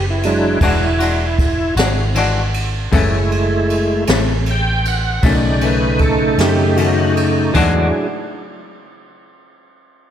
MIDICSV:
0, 0, Header, 1, 5, 480
1, 0, Start_track
1, 0, Tempo, 770218
1, 1825, Time_signature, 12, 3, 24, 8
1, 6297, End_track
2, 0, Start_track
2, 0, Title_t, "Tonewheel organ"
2, 0, Program_c, 0, 16
2, 64, Note_on_c, 0, 64, 84
2, 154, Note_on_c, 0, 54, 47
2, 156, Note_on_c, 0, 56, 47
2, 157, Note_off_c, 0, 64, 0
2, 159, Note_on_c, 0, 62, 56
2, 165, Note_on_c, 0, 64, 97
2, 366, Note_off_c, 0, 54, 0
2, 367, Note_off_c, 0, 56, 0
2, 368, Note_off_c, 0, 62, 0
2, 1090, Note_off_c, 0, 64, 0
2, 1820, Note_on_c, 0, 56, 59
2, 1822, Note_on_c, 0, 57, 54
2, 1826, Note_on_c, 0, 64, 72
2, 2517, Note_off_c, 0, 56, 0
2, 2519, Note_off_c, 0, 57, 0
2, 2520, Note_off_c, 0, 64, 0
2, 2809, Note_on_c, 0, 79, 113
2, 3030, Note_off_c, 0, 79, 0
2, 3041, Note_on_c, 0, 78, 86
2, 3266, Note_off_c, 0, 78, 0
2, 3275, Note_on_c, 0, 49, 57
2, 3278, Note_on_c, 0, 57, 65
2, 3287, Note_on_c, 0, 63, 66
2, 3298, Note_on_c, 0, 74, 88
2, 3513, Note_on_c, 0, 71, 87
2, 3515, Note_off_c, 0, 74, 0
2, 3742, Note_off_c, 0, 71, 0
2, 3744, Note_on_c, 0, 69, 100
2, 3977, Note_off_c, 0, 69, 0
2, 3993, Note_on_c, 0, 67, 103
2, 4216, Note_on_c, 0, 66, 117
2, 4221, Note_off_c, 0, 67, 0
2, 4453, Note_off_c, 0, 66, 0
2, 4684, Note_off_c, 0, 49, 0
2, 4686, Note_off_c, 0, 57, 0
2, 4690, Note_on_c, 0, 64, 75
2, 4691, Note_off_c, 0, 63, 0
2, 4692, Note_on_c, 0, 54, 71
2, 4694, Note_on_c, 0, 62, 64
2, 4696, Note_on_c, 0, 68, 78
2, 5030, Note_off_c, 0, 64, 0
2, 5031, Note_off_c, 0, 54, 0
2, 5032, Note_off_c, 0, 62, 0
2, 5033, Note_off_c, 0, 68, 0
2, 6297, End_track
3, 0, Start_track
3, 0, Title_t, "Clean electric guitar"
3, 0, Program_c, 1, 27
3, 385, Note_on_c, 1, 52, 86
3, 390, Note_on_c, 1, 56, 77
3, 392, Note_on_c, 1, 62, 94
3, 398, Note_on_c, 1, 66, 83
3, 529, Note_off_c, 1, 52, 0
3, 531, Note_off_c, 1, 56, 0
3, 532, Note_off_c, 1, 62, 0
3, 535, Note_off_c, 1, 66, 0
3, 618, Note_on_c, 1, 66, 64
3, 628, Note_on_c, 1, 62, 53
3, 641, Note_on_c, 1, 56, 49
3, 765, Note_off_c, 1, 66, 0
3, 770, Note_off_c, 1, 62, 0
3, 777, Note_off_c, 1, 56, 0
3, 1104, Note_on_c, 1, 66, 63
3, 1116, Note_on_c, 1, 62, 59
3, 1126, Note_on_c, 1, 56, 57
3, 1248, Note_off_c, 1, 66, 0
3, 1254, Note_off_c, 1, 62, 0
3, 1259, Note_off_c, 1, 56, 0
3, 1340, Note_on_c, 1, 52, 74
3, 1348, Note_on_c, 1, 56, 75
3, 1354, Note_on_c, 1, 62, 88
3, 1359, Note_on_c, 1, 66, 82
3, 1486, Note_off_c, 1, 52, 0
3, 1490, Note_off_c, 1, 56, 0
3, 1493, Note_off_c, 1, 62, 0
3, 1496, Note_off_c, 1, 66, 0
3, 1818, Note_on_c, 1, 42, 105
3, 1824, Note_on_c, 1, 52, 96
3, 1829, Note_on_c, 1, 57, 104
3, 1834, Note_on_c, 1, 61, 107
3, 1965, Note_off_c, 1, 42, 0
3, 1968, Note_off_c, 1, 52, 0
3, 1971, Note_off_c, 1, 57, 0
3, 1973, Note_off_c, 1, 61, 0
3, 2542, Note_on_c, 1, 61, 63
3, 2554, Note_on_c, 1, 57, 58
3, 2563, Note_on_c, 1, 52, 49
3, 2687, Note_off_c, 1, 61, 0
3, 2694, Note_off_c, 1, 57, 0
3, 2698, Note_off_c, 1, 52, 0
3, 3258, Note_on_c, 1, 47, 80
3, 3263, Note_on_c, 1, 51, 85
3, 3265, Note_on_c, 1, 57, 101
3, 3275, Note_on_c, 1, 61, 89
3, 3405, Note_off_c, 1, 47, 0
3, 3408, Note_off_c, 1, 51, 0
3, 3409, Note_off_c, 1, 57, 0
3, 3414, Note_off_c, 1, 61, 0
3, 3502, Note_on_c, 1, 61, 61
3, 3513, Note_on_c, 1, 57, 55
3, 3524, Note_on_c, 1, 51, 46
3, 3647, Note_off_c, 1, 61, 0
3, 3653, Note_off_c, 1, 57, 0
3, 3658, Note_off_c, 1, 51, 0
3, 3980, Note_on_c, 1, 61, 63
3, 3990, Note_on_c, 1, 57, 52
3, 4001, Note_on_c, 1, 51, 55
3, 4127, Note_off_c, 1, 61, 0
3, 4131, Note_off_c, 1, 57, 0
3, 4137, Note_off_c, 1, 51, 0
3, 4218, Note_on_c, 1, 47, 68
3, 4225, Note_on_c, 1, 51, 68
3, 4231, Note_on_c, 1, 57, 65
3, 4239, Note_on_c, 1, 61, 75
3, 4365, Note_off_c, 1, 47, 0
3, 4369, Note_off_c, 1, 51, 0
3, 4372, Note_off_c, 1, 57, 0
3, 4376, Note_off_c, 1, 61, 0
3, 4699, Note_on_c, 1, 52, 97
3, 4704, Note_on_c, 1, 56, 98
3, 4710, Note_on_c, 1, 62, 102
3, 4716, Note_on_c, 1, 66, 86
3, 4894, Note_off_c, 1, 52, 0
3, 4896, Note_off_c, 1, 56, 0
3, 4899, Note_off_c, 1, 62, 0
3, 4902, Note_off_c, 1, 66, 0
3, 6297, End_track
4, 0, Start_track
4, 0, Title_t, "Fingered electric bass"
4, 0, Program_c, 2, 33
4, 0, Note_on_c, 2, 30, 96
4, 356, Note_off_c, 2, 30, 0
4, 379, Note_on_c, 2, 28, 90
4, 1080, Note_off_c, 2, 28, 0
4, 1097, Note_on_c, 2, 32, 93
4, 1799, Note_off_c, 2, 32, 0
4, 1821, Note_on_c, 2, 30, 97
4, 2521, Note_off_c, 2, 30, 0
4, 2545, Note_on_c, 2, 33, 106
4, 3243, Note_off_c, 2, 33, 0
4, 3260, Note_on_c, 2, 35, 92
4, 3960, Note_off_c, 2, 35, 0
4, 3976, Note_on_c, 2, 42, 101
4, 4678, Note_off_c, 2, 42, 0
4, 4701, Note_on_c, 2, 40, 97
4, 4925, Note_off_c, 2, 40, 0
4, 6297, End_track
5, 0, Start_track
5, 0, Title_t, "Drums"
5, 144, Note_on_c, 9, 51, 68
5, 207, Note_off_c, 9, 51, 0
5, 380, Note_on_c, 9, 36, 120
5, 380, Note_on_c, 9, 51, 99
5, 442, Note_off_c, 9, 51, 0
5, 443, Note_off_c, 9, 36, 0
5, 624, Note_on_c, 9, 51, 76
5, 686, Note_off_c, 9, 51, 0
5, 863, Note_on_c, 9, 36, 83
5, 864, Note_on_c, 9, 51, 65
5, 926, Note_off_c, 9, 36, 0
5, 926, Note_off_c, 9, 51, 0
5, 1103, Note_on_c, 9, 51, 87
5, 1117, Note_on_c, 9, 38, 114
5, 1165, Note_off_c, 9, 51, 0
5, 1179, Note_off_c, 9, 38, 0
5, 1341, Note_on_c, 9, 51, 77
5, 1404, Note_off_c, 9, 51, 0
5, 1583, Note_on_c, 9, 51, 67
5, 1645, Note_off_c, 9, 51, 0
5, 1822, Note_on_c, 9, 51, 88
5, 1824, Note_on_c, 9, 36, 111
5, 1884, Note_off_c, 9, 51, 0
5, 1886, Note_off_c, 9, 36, 0
5, 2066, Note_on_c, 9, 51, 52
5, 2128, Note_off_c, 9, 51, 0
5, 2305, Note_on_c, 9, 51, 57
5, 2367, Note_off_c, 9, 51, 0
5, 2537, Note_on_c, 9, 51, 84
5, 2552, Note_on_c, 9, 38, 127
5, 2600, Note_off_c, 9, 51, 0
5, 2614, Note_off_c, 9, 38, 0
5, 2778, Note_on_c, 9, 51, 66
5, 2841, Note_off_c, 9, 51, 0
5, 3023, Note_on_c, 9, 51, 63
5, 3086, Note_off_c, 9, 51, 0
5, 3258, Note_on_c, 9, 51, 86
5, 3260, Note_on_c, 9, 36, 112
5, 3320, Note_off_c, 9, 51, 0
5, 3322, Note_off_c, 9, 36, 0
5, 3496, Note_on_c, 9, 51, 67
5, 3558, Note_off_c, 9, 51, 0
5, 3731, Note_on_c, 9, 51, 67
5, 3737, Note_on_c, 9, 36, 80
5, 3794, Note_off_c, 9, 51, 0
5, 3800, Note_off_c, 9, 36, 0
5, 3977, Note_on_c, 9, 51, 84
5, 3992, Note_on_c, 9, 38, 113
5, 4040, Note_off_c, 9, 51, 0
5, 4054, Note_off_c, 9, 38, 0
5, 4220, Note_on_c, 9, 51, 75
5, 4282, Note_off_c, 9, 51, 0
5, 4466, Note_on_c, 9, 51, 66
5, 4529, Note_off_c, 9, 51, 0
5, 4701, Note_on_c, 9, 49, 91
5, 4703, Note_on_c, 9, 36, 104
5, 4764, Note_off_c, 9, 49, 0
5, 4766, Note_off_c, 9, 36, 0
5, 6297, End_track
0, 0, End_of_file